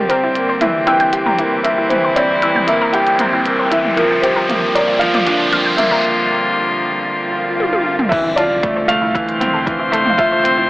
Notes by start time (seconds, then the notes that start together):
Already playing: D3 G3 C4 G4, riser
0.09 C4 A#4 C5, closed hi-hat
0.24 E4
0.35 A#3, closed hi-hat
0.49 C5
0.61 E3 E4 E5, closed hi-hat, mid tom
0.87 E3 E5 G5, closed hi-hat
1.00 G5, closed hi-hat
1.13 G4, closed hi-hat
1.26 E4 A#4, mid tom
1.38 A#3 E4, closed hi-hat
1.63 A#3 A#4 E5, closed hi-hat
1.78 E4
1.89 E3 C5, closed hi-hat, mid tom
2.04 C5
2.16 C4 E4 D5, closed hi-hat
2.42 E3 E5, closed hi-hat
2.55 G5, mid tom
2.67 A#3 E5, closed hi-hat
2.82 A#4
2.93 E4 G4 G5, closed hi-hat
3.07 closed hi-hat
3.19 C4 A#4, closed hi-hat, mid tom
3.33 E4
3.46 A#3, closed hi-hat
3.59 C5
3.71 E3 E4 E5, closed hi-hat
3.85 mid tom
3.97 D3 F3 A#4 F5, closed hi-hat
4.11 G5
4.22 G4 C5, closed hi-hat
4.36 A#4
4.49 A#3 F4, closed hi-hat, mid tom
4.75 A#3 A#4 D5, closed hi-hat
4.88 F4
4.99 F3 F5, closed hi-hat
5.14 D5, closed hi-hat, mid tom
5.22 F4
5.27 D4 F4, closed hi-hat
5.53 F3 F5, closed hi-hat
5.65 G5
5.77 A#3 E5, closed hi-hat, mid tom
5.91 A#4
7.08 swell
7.60 high tom
7.73 high tom
7.99 mid tom
8.09 F1 E3 E5, kick, closed hi-hat, crash, impact
8.24 E4
8.36 F4 A4 D5, closed hi-hat
8.63 A3 E4, kick, closed hi-hat
8.76 C5
8.88 A3 F5, closed hi-hat
9.02 E4
9.14 E3 E5, kick, closed hi-hat
9.24 C5
9.29 closed hi-hat
9.40 C4 E4, closed hi-hat, mid tom
9.54 A4
9.66 E3, kick, closed hi-hat
9.80 E4
9.92 A3 A4, closed hi-hat
10.06 F5, mid tom
10.18 E4 F4 E5, kick, closed hi-hat
10.32 C5
10.44 C4, closed hi-hat
10.57 E4